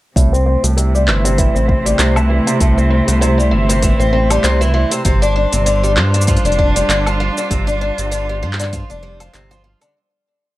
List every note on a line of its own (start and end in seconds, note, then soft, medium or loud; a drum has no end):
0.15 0.57 C2 medium
0.15 0.31 A2 medium
0.15 5.06 C3 medium
0.15 kick loud
0.15 open hi-hat soft
0.15 shaker medium
0.33 0.45 C4 medium
0.33 shaker soft
0.37 5.06 A3 medium
0.46 0.62 C4 medium
0.64 1.09 C2 medium
0.64 0.76 A2 medium
0.64 open hi-hat soft
0.64 shaker medium
0.74 0.92 C3 medium
0.74 5.06 E4 medium
0.74 open hi-hat soft
0.78 shaker soft
0.95 1.02 G3 medium
0.95 shaker soft
1.00 9.95 C5 medium
1.08 1.49 G1 loud
1.08 1.23 E3 medium
1.08 clap medium
1.24 1.37 C3 medium
1.24 open hi-hat medium
1.24 shaker medium
1.38 1.55 E3 medium
1.38 kick loud
1.38 open hi-hat soft
1.38 shaker medium
1.55 1.94 A1 medium
1.55 1.67 C4 medium
1.55 shaker soft
1.68 1.84 C4 medium
1.68 kick loud
1.85 1.98 G3 medium
1.85 open hi-hat medium
1.85 shaker medium
1.99 2.40 C2 medium
1.99 2.15 C3 medium
1.99 clap medium
1.99 open hi-hat soft
1.99 shaker medium
2.16 2.29 E3 medium
2.16 low woodblock medium
2.16 shaker soft
2.30 2.45 E3 medium
2.47 2.59 C3 medium
2.47 open hi-hat medium
2.47 shaker medium
2.60 3.02 C2 medium
2.60 2.76 A2 medium
2.60 kick loud
2.60 open hi-hat soft
2.60 shaker medium
2.78 2.89 C4 medium
2.78 shaker soft
2.90 3.06 C4 medium
3.08 3.54 C2 medium
3.08 3.20 A2 medium
3.08 open hi-hat soft
3.08 shaker medium
3.21 3.37 C3 medium
3.21 open hi-hat soft
3.21 shaker soft
3.38 3.46 G3 medium
3.38 shaker soft
3.51 3.93 G1 loud
3.51 3.67 E3 medium
3.69 3.82 C3 medium
3.69 open hi-hat medium
3.69 shaker medium
3.82 3.99 E3 medium
3.82 kick loud
3.82 open hi-hat soft
3.82 shaker medium
3.99 4.39 A1 medium
3.99 4.12 C4 medium
3.99 shaker soft
4.13 4.29 C4 medium
4.30 4.43 G3 medium
4.30 open hi-hat soft
4.30 low woodblock medium
4.30 shaker medium
4.44 4.85 C2 medium
4.44 4.60 C3 medium
4.44 clap medium
4.44 open hi-hat soft
4.44 shaker medium
4.61 4.72 E3 medium
4.61 shaker soft
4.74 4.90 E3 medium
4.91 5.04 C3 medium
4.91 open hi-hat soft
4.91 shaker medium
5.05 5.47 G1 medium
5.05 5.21 C3 medium
5.05 9.95 G3 medium
5.05 kick loud
5.05 open hi-hat soft
5.05 shaker medium
5.22 9.95 D4 medium
5.22 5.35 D4 medium
5.22 shaker soft
5.36 5.51 D4 medium
5.52 5.98 G1 medium
5.52 5.65 C3 medium
5.52 open hi-hat soft
5.52 shaker medium
5.66 5.82 D3 medium
5.66 open hi-hat soft
5.66 shaker medium
5.79 5.91 G3 medium
5.79 9.95 F4 medium
5.84 shaker soft
5.96 6.38 G2 loud
5.96 6.12 F3 medium
5.96 clap medium
6.14 6.27 D3 medium
6.14 open hi-hat soft
6.22 shaker medium
6.27 6.44 F3 medium
6.27 kick loud
6.27 open hi-hat soft
6.27 shaker medium
6.37 open hi-hat soft
6.44 6.84 F1 medium
6.44 6.57 D4 medium
6.44 open hi-hat soft
6.44 shaker soft
6.52 open hi-hat soft
6.59 6.74 D4 medium
6.59 kick loud
6.76 6.88 G3 medium
6.76 open hi-hat soft
6.76 shaker medium
6.88 7.30 G1 medium
6.88 7.05 D3 medium
6.88 clap medium
6.88 open hi-hat soft
6.88 shaker medium
7.06 7.19 F3 medium
7.06 low woodblock medium
7.06 shaker soft
7.20 7.35 F3 medium
7.38 7.50 D3 medium
7.38 shaker medium
7.51 7.92 G1 medium
7.51 7.66 C3 medium
7.51 kick loud
7.51 open hi-hat soft
7.51 shaker medium
7.67 7.80 D4 medium
7.67 shaker soft
7.81 7.97 D4 medium
7.98 8.44 G1 medium
7.98 8.11 C3 medium
7.98 open hi-hat soft
7.98 shaker medium
8.11 8.27 D3 medium
8.11 open hi-hat soft
8.11 shaker medium
8.29 8.37 G3 medium
8.43 8.84 G2 loud
8.43 8.58 F3 medium
8.53 clap medium
8.60 8.72 D3 medium
8.60 clap soft
8.60 open hi-hat medium
8.60 shaker medium
8.73 8.89 F3 medium
8.73 kick loud
8.73 open hi-hat soft
8.73 shaker medium
8.90 9.29 F1 medium
8.90 9.02 D4 medium
8.90 shaker soft
9.03 9.19 G3 medium
9.20 9.33 F3 medium
9.20 open hi-hat medium
9.20 low woodblock medium
9.20 shaker medium
9.34 9.75 G1 medium
9.34 9.49 C3 loud
9.34 clap medium
9.34 open hi-hat soft
9.34 shaker medium
9.51 9.63 F3 medium
9.51 shaker soft
9.64 9.80 F3 medium
9.81 9.94 D3 medium
9.81 open hi-hat medium
9.81 low woodblock medium
9.81 shaker medium